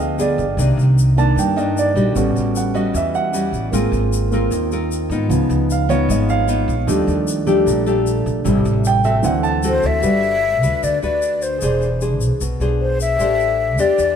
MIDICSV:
0, 0, Header, 1, 6, 480
1, 0, Start_track
1, 0, Tempo, 393959
1, 705, Time_signature, 4, 2, 24, 8
1, 17250, End_track
2, 0, Start_track
2, 0, Title_t, "Flute"
2, 0, Program_c, 0, 73
2, 11783, Note_on_c, 0, 72, 102
2, 12018, Note_on_c, 0, 76, 113
2, 12036, Note_off_c, 0, 72, 0
2, 13204, Note_on_c, 0, 74, 91
2, 13222, Note_off_c, 0, 76, 0
2, 13428, Note_off_c, 0, 74, 0
2, 13435, Note_on_c, 0, 74, 85
2, 13921, Note_on_c, 0, 72, 75
2, 13939, Note_off_c, 0, 74, 0
2, 14634, Note_off_c, 0, 72, 0
2, 15609, Note_on_c, 0, 72, 85
2, 15822, Note_off_c, 0, 72, 0
2, 15860, Note_on_c, 0, 76, 109
2, 16818, Note_on_c, 0, 74, 94
2, 16836, Note_off_c, 0, 76, 0
2, 17250, Note_off_c, 0, 74, 0
2, 17250, End_track
3, 0, Start_track
3, 0, Title_t, "Grand piano"
3, 0, Program_c, 1, 0
3, 0, Control_c, 1, 64, 127
3, 0, Note_on_c, 1, 53, 44
3, 0, Note_on_c, 1, 59, 49
3, 0, Note_on_c, 1, 75, 63
3, 0, Note_on_c, 1, 77, 66
3, 0, Note_on_c, 1, 79, 75
3, 221, Note_off_c, 1, 75, 0
3, 253, Note_on_c, 1, 74, 60
3, 472, Note_off_c, 1, 74, 0
3, 651, Note_off_c, 1, 53, 0
3, 658, Note_off_c, 1, 59, 0
3, 720, Control_c, 1, 64, 0
3, 726, Note_off_c, 1, 79, 0
3, 729, Note_off_c, 1, 77, 0
3, 948, Control_c, 1, 64, 127
3, 1417, Note_on_c, 1, 51, 42
3, 1432, Note_on_c, 1, 58, 39
3, 1435, Note_on_c, 1, 62, 45
3, 1440, Note_on_c, 1, 81, 81
3, 1665, Note_off_c, 1, 81, 0
3, 1694, Note_on_c, 1, 79, 63
3, 1740, Note_off_c, 1, 51, 0
3, 1748, Note_off_c, 1, 58, 0
3, 1749, Note_off_c, 1, 62, 0
3, 1913, Note_off_c, 1, 79, 0
3, 1914, Note_on_c, 1, 75, 64
3, 2142, Note_off_c, 1, 75, 0
3, 2182, Note_on_c, 1, 74, 64
3, 2314, Note_off_c, 1, 74, 0
3, 2621, Note_on_c, 1, 55, 45
3, 2627, Note_on_c, 1, 59, 40
3, 2628, Note_on_c, 1, 61, 40
3, 2637, Note_on_c, 1, 66, 51
3, 2642, Control_c, 1, 64, 0
3, 2873, Control_c, 1, 64, 127
3, 3131, Note_on_c, 1, 78, 62
3, 3351, Note_off_c, 1, 78, 0
3, 3355, Note_on_c, 1, 75, 68
3, 3582, Note_off_c, 1, 75, 0
3, 3610, Note_on_c, 1, 76, 59
3, 3830, Note_off_c, 1, 76, 0
3, 3839, Note_on_c, 1, 78, 80
3, 4064, Note_off_c, 1, 78, 0
3, 4493, Note_off_c, 1, 55, 0
3, 4496, Note_off_c, 1, 59, 0
3, 4497, Note_off_c, 1, 61, 0
3, 4501, Note_off_c, 1, 66, 0
3, 4527, Note_on_c, 1, 58, 42
3, 4537, Note_on_c, 1, 60, 39
3, 4545, Note_on_c, 1, 65, 46
3, 4558, Control_c, 1, 64, 0
3, 4756, Control_c, 1, 64, 127
3, 5229, Note_off_c, 1, 58, 0
3, 5235, Note_off_c, 1, 60, 0
3, 5238, Note_off_c, 1, 65, 0
3, 5247, Note_on_c, 1, 58, 37
3, 5253, Note_on_c, 1, 60, 32
3, 5257, Note_on_c, 1, 65, 43
3, 5470, Note_off_c, 1, 58, 0
3, 5474, Note_off_c, 1, 60, 0
3, 5476, Note_off_c, 1, 65, 0
3, 6445, Note_on_c, 1, 53, 44
3, 6454, Note_on_c, 1, 59, 41
3, 6458, Note_on_c, 1, 63, 48
3, 6482, Control_c, 1, 64, 0
3, 6664, Control_c, 1, 64, 127
3, 6773, Note_off_c, 1, 53, 0
3, 6777, Note_off_c, 1, 59, 0
3, 6780, Note_off_c, 1, 63, 0
3, 6968, Note_on_c, 1, 77, 61
3, 7174, Note_on_c, 1, 53, 35
3, 7180, Note_on_c, 1, 59, 34
3, 7182, Note_on_c, 1, 63, 41
3, 7188, Note_on_c, 1, 73, 64
3, 7189, Note_off_c, 1, 77, 0
3, 7394, Note_off_c, 1, 53, 0
3, 7397, Note_off_c, 1, 59, 0
3, 7398, Note_off_c, 1, 63, 0
3, 7418, Note_off_c, 1, 73, 0
3, 7448, Note_on_c, 1, 75, 60
3, 7669, Note_off_c, 1, 75, 0
3, 7673, Note_on_c, 1, 77, 76
3, 7901, Note_off_c, 1, 77, 0
3, 8372, Note_on_c, 1, 53, 46
3, 8375, Note_on_c, 1, 55, 41
3, 8382, Note_on_c, 1, 57, 44
3, 8386, Note_on_c, 1, 62, 52
3, 8399, Control_c, 1, 64, 0
3, 8626, Control_c, 1, 64, 127
3, 9079, Note_off_c, 1, 53, 0
3, 9080, Note_off_c, 1, 55, 0
3, 9089, Note_off_c, 1, 57, 0
3, 9089, Note_off_c, 1, 62, 0
3, 9097, Note_on_c, 1, 53, 37
3, 9098, Note_on_c, 1, 55, 36
3, 9107, Note_on_c, 1, 57, 33
3, 9107, Note_on_c, 1, 62, 42
3, 9316, Note_off_c, 1, 53, 0
3, 9317, Note_off_c, 1, 55, 0
3, 9321, Note_off_c, 1, 57, 0
3, 9321, Note_off_c, 1, 62, 0
3, 10296, Note_on_c, 1, 48, 46
3, 10304, Note_on_c, 1, 55, 42
3, 10318, Control_c, 1, 64, 0
3, 10564, Control_c, 1, 64, 127
3, 10619, Note_off_c, 1, 48, 0
3, 10623, Note_off_c, 1, 55, 0
3, 10807, Note_on_c, 1, 79, 81
3, 11025, Note_on_c, 1, 76, 69
3, 11028, Note_off_c, 1, 79, 0
3, 11239, Note_on_c, 1, 52, 45
3, 11243, Note_on_c, 1, 54, 39
3, 11253, Note_on_c, 1, 60, 49
3, 11257, Note_off_c, 1, 76, 0
3, 11275, Note_on_c, 1, 78, 67
3, 11277, Control_c, 1, 64, 0
3, 11493, Note_on_c, 1, 81, 85
3, 11502, Note_off_c, 1, 78, 0
3, 11522, Control_c, 1, 64, 127
3, 11570, Note_off_c, 1, 52, 0
3, 11572, Note_off_c, 1, 54, 0
3, 11578, Note_off_c, 1, 60, 0
3, 11640, Note_off_c, 1, 81, 0
3, 12181, Note_on_c, 1, 66, 46
3, 12210, Note_on_c, 1, 69, 42
3, 12235, Note_on_c, 1, 71, 42
3, 12241, Control_c, 1, 64, 0
3, 12257, Note_on_c, 1, 74, 49
3, 12432, Control_c, 1, 64, 127
3, 14086, Note_off_c, 1, 66, 0
3, 14100, Note_off_c, 1, 69, 0
3, 14113, Note_off_c, 1, 71, 0
3, 14113, Note_on_c, 1, 68, 49
3, 14125, Note_off_c, 1, 74, 0
3, 14161, Control_c, 1, 64, 0
3, 14162, Note_on_c, 1, 72, 45
3, 14187, Note_on_c, 1, 74, 53
3, 14366, Control_c, 1, 64, 127
3, 16013, Note_off_c, 1, 68, 0
3, 16038, Note_off_c, 1, 72, 0
3, 16042, Note_on_c, 1, 67, 50
3, 16051, Note_off_c, 1, 74, 0
3, 16085, Control_c, 1, 64, 0
3, 16092, Note_on_c, 1, 72, 44
3, 16113, Note_on_c, 1, 74, 52
3, 16299, Control_c, 1, 64, 127
3, 17250, Note_off_c, 1, 67, 0
3, 17250, Note_off_c, 1, 72, 0
3, 17250, Note_off_c, 1, 74, 0
3, 17250, End_track
4, 0, Start_track
4, 0, Title_t, "Nylon-string guitar"
4, 0, Program_c, 2, 24
4, 0, Note_on_c, 2, 50, 58
4, 0, Note_on_c, 2, 59, 63
4, 0, Note_on_c, 2, 65, 65
4, 0, Note_on_c, 2, 68, 75
4, 183, Note_off_c, 2, 59, 0
4, 183, Note_off_c, 2, 65, 0
4, 188, Note_off_c, 2, 68, 0
4, 224, Note_on_c, 2, 59, 56
4, 233, Note_on_c, 2, 65, 53
4, 237, Note_on_c, 2, 68, 57
4, 535, Note_off_c, 2, 59, 0
4, 537, Note_off_c, 2, 65, 0
4, 540, Note_off_c, 2, 68, 0
4, 678, Note_off_c, 2, 50, 0
4, 709, Note_on_c, 2, 48, 55
4, 712, Note_on_c, 2, 51, 57
4, 714, Note_on_c, 2, 58, 59
4, 723, Note_on_c, 2, 62, 60
4, 1389, Note_off_c, 2, 51, 0
4, 1392, Note_off_c, 2, 58, 0
4, 1393, Note_off_c, 2, 62, 0
4, 1428, Note_on_c, 2, 51, 63
4, 1433, Note_on_c, 2, 62, 67
4, 1435, Note_on_c, 2, 58, 61
4, 1643, Note_off_c, 2, 48, 0
4, 1657, Note_on_c, 2, 43, 57
4, 1868, Note_off_c, 2, 51, 0
4, 1869, Note_off_c, 2, 58, 0
4, 1870, Note_off_c, 2, 62, 0
4, 1904, Note_on_c, 2, 51, 62
4, 1910, Note_on_c, 2, 58, 61
4, 1918, Note_on_c, 2, 62, 79
4, 2346, Note_off_c, 2, 51, 0
4, 2349, Note_off_c, 2, 58, 0
4, 2351, Note_off_c, 2, 62, 0
4, 2383, Note_on_c, 2, 55, 64
4, 2390, Note_on_c, 2, 61, 61
4, 2398, Note_on_c, 2, 66, 68
4, 2596, Note_off_c, 2, 43, 0
4, 2632, Note_on_c, 2, 45, 54
4, 3305, Note_off_c, 2, 55, 0
4, 3308, Note_off_c, 2, 61, 0
4, 3312, Note_off_c, 2, 66, 0
4, 3338, Note_on_c, 2, 55, 68
4, 3343, Note_on_c, 2, 61, 59
4, 3346, Note_on_c, 2, 66, 67
4, 3564, Note_off_c, 2, 45, 0
4, 3581, Note_on_c, 2, 52, 56
4, 4022, Note_off_c, 2, 55, 0
4, 4025, Note_off_c, 2, 61, 0
4, 4026, Note_off_c, 2, 66, 0
4, 4061, Note_on_c, 2, 55, 56
4, 4068, Note_on_c, 2, 61, 56
4, 4074, Note_on_c, 2, 66, 59
4, 4505, Note_off_c, 2, 55, 0
4, 4506, Note_off_c, 2, 61, 0
4, 4510, Note_off_c, 2, 66, 0
4, 4518, Note_off_c, 2, 52, 0
4, 4546, Note_on_c, 2, 56, 56
4, 4548, Note_on_c, 2, 60, 57
4, 4550, Note_on_c, 2, 65, 60
4, 4559, Note_on_c, 2, 70, 57
4, 5225, Note_off_c, 2, 60, 0
4, 5228, Note_off_c, 2, 65, 0
4, 5233, Note_off_c, 2, 70, 0
4, 5272, Note_on_c, 2, 60, 65
4, 5279, Note_on_c, 2, 65, 58
4, 5283, Note_on_c, 2, 70, 68
4, 5481, Note_off_c, 2, 56, 0
4, 5512, Note_on_c, 2, 51, 59
4, 5709, Note_off_c, 2, 60, 0
4, 5711, Note_off_c, 2, 65, 0
4, 5715, Note_off_c, 2, 70, 0
4, 5751, Note_on_c, 2, 60, 60
4, 5758, Note_on_c, 2, 65, 65
4, 5762, Note_on_c, 2, 70, 69
4, 6190, Note_off_c, 2, 60, 0
4, 6191, Note_off_c, 2, 65, 0
4, 6191, Note_off_c, 2, 70, 0
4, 6230, Note_on_c, 2, 59, 62
4, 6235, Note_on_c, 2, 63, 67
4, 6239, Note_on_c, 2, 65, 73
4, 6444, Note_off_c, 2, 51, 0
4, 6470, Note_on_c, 2, 49, 59
4, 7148, Note_off_c, 2, 59, 0
4, 7149, Note_off_c, 2, 63, 0
4, 7153, Note_off_c, 2, 65, 0
4, 7174, Note_on_c, 2, 59, 68
4, 7182, Note_on_c, 2, 63, 65
4, 7186, Note_on_c, 2, 65, 66
4, 7403, Note_off_c, 2, 49, 0
4, 7416, Note_on_c, 2, 56, 56
4, 7861, Note_off_c, 2, 59, 0
4, 7863, Note_off_c, 2, 63, 0
4, 7866, Note_off_c, 2, 65, 0
4, 7895, Note_on_c, 2, 59, 61
4, 7904, Note_on_c, 2, 63, 57
4, 7911, Note_on_c, 2, 65, 65
4, 8208, Note_off_c, 2, 59, 0
4, 8213, Note_off_c, 2, 63, 0
4, 8214, Note_off_c, 2, 65, 0
4, 8356, Note_off_c, 2, 56, 0
4, 8370, Note_on_c, 2, 51, 57
4, 8376, Note_on_c, 2, 57, 59
4, 8383, Note_on_c, 2, 62, 52
4, 8386, Note_on_c, 2, 67, 65
4, 9060, Note_off_c, 2, 57, 0
4, 9062, Note_off_c, 2, 62, 0
4, 9066, Note_off_c, 2, 67, 0
4, 9095, Note_on_c, 2, 57, 65
4, 9098, Note_on_c, 2, 62, 69
4, 9104, Note_on_c, 2, 67, 72
4, 9314, Note_off_c, 2, 51, 0
4, 9337, Note_on_c, 2, 46, 61
4, 9541, Note_off_c, 2, 57, 0
4, 9541, Note_off_c, 2, 62, 0
4, 9545, Note_off_c, 2, 67, 0
4, 9581, Note_on_c, 2, 57, 68
4, 9587, Note_on_c, 2, 62, 70
4, 9590, Note_on_c, 2, 67, 71
4, 10265, Note_off_c, 2, 57, 0
4, 10266, Note_off_c, 2, 62, 0
4, 10268, Note_off_c, 2, 67, 0
4, 10276, Note_off_c, 2, 46, 0
4, 10287, Note_on_c, 2, 45, 61
4, 10290, Note_on_c, 2, 55, 58
4, 10295, Note_on_c, 2, 60, 57
4, 10300, Note_on_c, 2, 64, 67
4, 10978, Note_off_c, 2, 55, 0
4, 10980, Note_off_c, 2, 64, 0
4, 10981, Note_off_c, 2, 60, 0
4, 11014, Note_on_c, 2, 57, 61
4, 11018, Note_on_c, 2, 60, 74
4, 11025, Note_on_c, 2, 66, 76
4, 11233, Note_off_c, 2, 45, 0
4, 11254, Note_on_c, 2, 50, 57
4, 11701, Note_off_c, 2, 57, 0
4, 11703, Note_off_c, 2, 60, 0
4, 11705, Note_off_c, 2, 66, 0
4, 11742, Note_on_c, 2, 57, 61
4, 11748, Note_on_c, 2, 60, 55
4, 11749, Note_on_c, 2, 66, 66
4, 12185, Note_off_c, 2, 57, 0
4, 12187, Note_off_c, 2, 60, 0
4, 12189, Note_off_c, 2, 66, 0
4, 12195, Note_off_c, 2, 50, 0
4, 12212, Note_on_c, 2, 55, 51
4, 12220, Note_on_c, 2, 62, 50
4, 12222, Note_on_c, 2, 71, 54
4, 12224, Note_on_c, 2, 66, 50
4, 12698, Note_off_c, 2, 66, 0
4, 12699, Note_off_c, 2, 62, 0
4, 12701, Note_off_c, 2, 71, 0
4, 12944, Note_on_c, 2, 62, 56
4, 12951, Note_on_c, 2, 66, 54
4, 12956, Note_on_c, 2, 71, 60
4, 13156, Note_off_c, 2, 55, 0
4, 13191, Note_on_c, 2, 50, 51
4, 13387, Note_off_c, 2, 62, 0
4, 13389, Note_off_c, 2, 66, 0
4, 13393, Note_off_c, 2, 71, 0
4, 13431, Note_on_c, 2, 62, 65
4, 13437, Note_on_c, 2, 66, 61
4, 13445, Note_on_c, 2, 71, 67
4, 14111, Note_off_c, 2, 62, 0
4, 14113, Note_off_c, 2, 66, 0
4, 14117, Note_off_c, 2, 71, 0
4, 14125, Note_off_c, 2, 50, 0
4, 14161, Note_on_c, 2, 52, 53
4, 14162, Note_on_c, 2, 62, 54
4, 14165, Note_on_c, 2, 68, 50
4, 14171, Note_on_c, 2, 72, 57
4, 14463, Note_off_c, 2, 62, 0
4, 14463, Note_off_c, 2, 68, 0
4, 14468, Note_off_c, 2, 72, 0
4, 14639, Note_on_c, 2, 62, 54
4, 14641, Note_on_c, 2, 68, 50
4, 14647, Note_on_c, 2, 72, 60
4, 15091, Note_off_c, 2, 52, 0
4, 15111, Note_off_c, 2, 62, 0
4, 15111, Note_off_c, 2, 68, 0
4, 15113, Note_off_c, 2, 72, 0
4, 15119, Note_on_c, 2, 47, 55
4, 15362, Note_on_c, 2, 62, 67
4, 15368, Note_on_c, 2, 68, 58
4, 15373, Note_on_c, 2, 72, 71
4, 16037, Note_off_c, 2, 62, 0
4, 16040, Note_off_c, 2, 68, 0
4, 16043, Note_off_c, 2, 72, 0
4, 16050, Note_off_c, 2, 47, 0
4, 16079, Note_on_c, 2, 57, 54
4, 16082, Note_on_c, 2, 62, 54
4, 16086, Note_on_c, 2, 67, 52
4, 16094, Note_on_c, 2, 72, 60
4, 16756, Note_off_c, 2, 62, 0
4, 16759, Note_off_c, 2, 67, 0
4, 16763, Note_off_c, 2, 72, 0
4, 16797, Note_on_c, 2, 62, 62
4, 16803, Note_on_c, 2, 67, 62
4, 16808, Note_on_c, 2, 72, 62
4, 17011, Note_off_c, 2, 57, 0
4, 17031, Note_on_c, 2, 52, 53
4, 17235, Note_off_c, 2, 62, 0
4, 17238, Note_off_c, 2, 67, 0
4, 17240, Note_off_c, 2, 72, 0
4, 17250, Note_off_c, 2, 52, 0
4, 17250, End_track
5, 0, Start_track
5, 0, Title_t, "Upright bass"
5, 0, Program_c, 3, 32
5, 0, Note_on_c, 3, 38, 93
5, 415, Note_off_c, 3, 38, 0
5, 463, Note_on_c, 3, 31, 92
5, 687, Note_off_c, 3, 31, 0
5, 695, Note_on_c, 3, 36, 98
5, 923, Note_off_c, 3, 36, 0
5, 938, Note_on_c, 3, 36, 93
5, 1613, Note_off_c, 3, 36, 0
5, 1656, Note_on_c, 3, 43, 89
5, 2331, Note_off_c, 3, 43, 0
5, 2380, Note_on_c, 3, 34, 88
5, 2605, Note_off_c, 3, 34, 0
5, 2622, Note_on_c, 3, 33, 92
5, 2846, Note_off_c, 3, 33, 0
5, 2870, Note_on_c, 3, 33, 92
5, 3538, Note_off_c, 3, 33, 0
5, 3582, Note_on_c, 3, 40, 89
5, 4254, Note_off_c, 3, 40, 0
5, 4296, Note_on_c, 3, 33, 86
5, 4523, Note_off_c, 3, 33, 0
5, 4539, Note_on_c, 3, 32, 96
5, 4764, Note_off_c, 3, 32, 0
5, 4772, Note_on_c, 3, 32, 93
5, 5449, Note_off_c, 3, 32, 0
5, 5494, Note_on_c, 3, 39, 92
5, 6170, Note_off_c, 3, 39, 0
5, 6207, Note_on_c, 3, 44, 94
5, 6438, Note_off_c, 3, 44, 0
5, 6452, Note_on_c, 3, 37, 98
5, 6680, Note_off_c, 3, 37, 0
5, 6695, Note_on_c, 3, 37, 95
5, 7370, Note_off_c, 3, 37, 0
5, 7415, Note_on_c, 3, 32, 95
5, 8090, Note_off_c, 3, 32, 0
5, 8135, Note_on_c, 3, 34, 96
5, 8362, Note_off_c, 3, 34, 0
5, 8376, Note_on_c, 3, 39, 94
5, 8603, Note_off_c, 3, 39, 0
5, 8616, Note_on_c, 3, 39, 100
5, 9291, Note_off_c, 3, 39, 0
5, 9337, Note_on_c, 3, 34, 90
5, 10011, Note_off_c, 3, 34, 0
5, 10063, Note_on_c, 3, 34, 90
5, 10287, Note_off_c, 3, 34, 0
5, 10300, Note_on_c, 3, 33, 97
5, 10525, Note_off_c, 3, 33, 0
5, 10542, Note_on_c, 3, 33, 101
5, 11214, Note_off_c, 3, 33, 0
5, 11261, Note_on_c, 3, 38, 93
5, 11934, Note_off_c, 3, 38, 0
5, 11984, Note_on_c, 3, 38, 91
5, 12207, Note_off_c, 3, 38, 0
5, 12222, Note_on_c, 3, 31, 88
5, 12949, Note_off_c, 3, 31, 0
5, 12949, Note_on_c, 3, 38, 79
5, 13059, Note_off_c, 3, 38, 0
5, 13193, Note_on_c, 3, 38, 84
5, 13413, Note_off_c, 3, 38, 0
5, 13431, Note_on_c, 3, 38, 78
5, 14100, Note_off_c, 3, 38, 0
5, 14160, Note_on_c, 3, 28, 87
5, 14870, Note_off_c, 3, 28, 0
5, 14870, Note_on_c, 3, 35, 77
5, 14980, Note_off_c, 3, 35, 0
5, 15118, Note_on_c, 3, 35, 82
5, 15337, Note_off_c, 3, 35, 0
5, 15352, Note_on_c, 3, 35, 77
5, 16022, Note_off_c, 3, 35, 0
5, 16073, Note_on_c, 3, 33, 88
5, 16795, Note_off_c, 3, 33, 0
5, 16795, Note_on_c, 3, 40, 79
5, 16904, Note_off_c, 3, 40, 0
5, 17039, Note_on_c, 3, 40, 81
5, 17250, Note_off_c, 3, 40, 0
5, 17250, End_track
6, 0, Start_track
6, 0, Title_t, "Drums"
6, 0, Note_on_c, 9, 82, 28
6, 117, Note_off_c, 9, 82, 0
6, 233, Note_on_c, 9, 82, 64
6, 355, Note_off_c, 9, 82, 0
6, 471, Note_on_c, 9, 82, 25
6, 593, Note_off_c, 9, 82, 0
6, 717, Note_on_c, 9, 82, 65
6, 839, Note_off_c, 9, 82, 0
6, 964, Note_on_c, 9, 82, 27
6, 1086, Note_off_c, 9, 82, 0
6, 1199, Note_on_c, 9, 82, 66
6, 1321, Note_off_c, 9, 82, 0
6, 1439, Note_on_c, 9, 82, 27
6, 1561, Note_off_c, 9, 82, 0
6, 1685, Note_on_c, 9, 82, 69
6, 1806, Note_off_c, 9, 82, 0
6, 1924, Note_on_c, 9, 82, 28
6, 2046, Note_off_c, 9, 82, 0
6, 2164, Note_on_c, 9, 82, 61
6, 2285, Note_off_c, 9, 82, 0
6, 2398, Note_on_c, 9, 82, 26
6, 2520, Note_off_c, 9, 82, 0
6, 2630, Note_on_c, 9, 82, 66
6, 2752, Note_off_c, 9, 82, 0
6, 2879, Note_on_c, 9, 82, 29
6, 3001, Note_off_c, 9, 82, 0
6, 3115, Note_on_c, 9, 82, 68
6, 3237, Note_off_c, 9, 82, 0
6, 3353, Note_on_c, 9, 82, 26
6, 3475, Note_off_c, 9, 82, 0
6, 3592, Note_on_c, 9, 82, 69
6, 3714, Note_off_c, 9, 82, 0
6, 3829, Note_on_c, 9, 82, 28
6, 3951, Note_off_c, 9, 82, 0
6, 4067, Note_on_c, 9, 82, 61
6, 4189, Note_off_c, 9, 82, 0
6, 4309, Note_on_c, 9, 82, 26
6, 4431, Note_off_c, 9, 82, 0
6, 4549, Note_on_c, 9, 82, 62
6, 4671, Note_off_c, 9, 82, 0
6, 4787, Note_on_c, 9, 82, 28
6, 4909, Note_off_c, 9, 82, 0
6, 5030, Note_on_c, 9, 82, 68
6, 5152, Note_off_c, 9, 82, 0
6, 5263, Note_on_c, 9, 82, 27
6, 5385, Note_off_c, 9, 82, 0
6, 5501, Note_on_c, 9, 82, 68
6, 5623, Note_off_c, 9, 82, 0
6, 5746, Note_on_c, 9, 82, 28
6, 5868, Note_off_c, 9, 82, 0
6, 5991, Note_on_c, 9, 82, 62
6, 6113, Note_off_c, 9, 82, 0
6, 6227, Note_on_c, 9, 82, 28
6, 6348, Note_off_c, 9, 82, 0
6, 6467, Note_on_c, 9, 82, 61
6, 6589, Note_off_c, 9, 82, 0
6, 6703, Note_on_c, 9, 82, 29
6, 6825, Note_off_c, 9, 82, 0
6, 6949, Note_on_c, 9, 82, 67
6, 7071, Note_off_c, 9, 82, 0
6, 7186, Note_on_c, 9, 82, 28
6, 7308, Note_off_c, 9, 82, 0
6, 7434, Note_on_c, 9, 82, 69
6, 7556, Note_off_c, 9, 82, 0
6, 7666, Note_on_c, 9, 82, 27
6, 7788, Note_off_c, 9, 82, 0
6, 7900, Note_on_c, 9, 82, 64
6, 8022, Note_off_c, 9, 82, 0
6, 8151, Note_on_c, 9, 82, 27
6, 8273, Note_off_c, 9, 82, 0
6, 8389, Note_on_c, 9, 82, 65
6, 8511, Note_off_c, 9, 82, 0
6, 8627, Note_on_c, 9, 82, 29
6, 8749, Note_off_c, 9, 82, 0
6, 8864, Note_on_c, 9, 82, 72
6, 8986, Note_off_c, 9, 82, 0
6, 9102, Note_on_c, 9, 82, 27
6, 9224, Note_off_c, 9, 82, 0
6, 9351, Note_on_c, 9, 82, 67
6, 9473, Note_off_c, 9, 82, 0
6, 9582, Note_on_c, 9, 82, 31
6, 9704, Note_off_c, 9, 82, 0
6, 9829, Note_on_c, 9, 82, 65
6, 9951, Note_off_c, 9, 82, 0
6, 10071, Note_on_c, 9, 82, 28
6, 10193, Note_off_c, 9, 82, 0
6, 10303, Note_on_c, 9, 82, 65
6, 10425, Note_off_c, 9, 82, 0
6, 10543, Note_on_c, 9, 82, 29
6, 10665, Note_off_c, 9, 82, 0
6, 10779, Note_on_c, 9, 82, 70
6, 10900, Note_off_c, 9, 82, 0
6, 11016, Note_on_c, 9, 82, 27
6, 11137, Note_off_c, 9, 82, 0
6, 11252, Note_on_c, 9, 82, 69
6, 11373, Note_off_c, 9, 82, 0
6, 11497, Note_on_c, 9, 82, 29
6, 11619, Note_off_c, 9, 82, 0
6, 11732, Note_on_c, 9, 82, 61
6, 11854, Note_off_c, 9, 82, 0
6, 11972, Note_on_c, 9, 82, 27
6, 12094, Note_off_c, 9, 82, 0
6, 12217, Note_on_c, 9, 82, 60
6, 12339, Note_off_c, 9, 82, 0
6, 12460, Note_on_c, 9, 82, 26
6, 12582, Note_off_c, 9, 82, 0
6, 12954, Note_on_c, 9, 82, 60
6, 13076, Note_off_c, 9, 82, 0
6, 13199, Note_on_c, 9, 82, 65
6, 13321, Note_off_c, 9, 82, 0
6, 13433, Note_on_c, 9, 82, 27
6, 13555, Note_off_c, 9, 82, 0
6, 13670, Note_on_c, 9, 82, 51
6, 13792, Note_off_c, 9, 82, 0
6, 13913, Note_on_c, 9, 82, 62
6, 14035, Note_off_c, 9, 82, 0
6, 14148, Note_on_c, 9, 82, 62
6, 14269, Note_off_c, 9, 82, 0
6, 14399, Note_on_c, 9, 82, 27
6, 14521, Note_off_c, 9, 82, 0
6, 14634, Note_on_c, 9, 82, 53
6, 14756, Note_off_c, 9, 82, 0
6, 14876, Note_on_c, 9, 82, 61
6, 14997, Note_off_c, 9, 82, 0
6, 15119, Note_on_c, 9, 82, 68
6, 15240, Note_off_c, 9, 82, 0
6, 15362, Note_on_c, 9, 82, 26
6, 15483, Note_off_c, 9, 82, 0
6, 15840, Note_on_c, 9, 82, 59
6, 15962, Note_off_c, 9, 82, 0
6, 16080, Note_on_c, 9, 82, 58
6, 16202, Note_off_c, 9, 82, 0
6, 16323, Note_on_c, 9, 82, 26
6, 16445, Note_off_c, 9, 82, 0
6, 16792, Note_on_c, 9, 82, 60
6, 16914, Note_off_c, 9, 82, 0
6, 17042, Note_on_c, 9, 82, 64
6, 17164, Note_off_c, 9, 82, 0
6, 17250, End_track
0, 0, End_of_file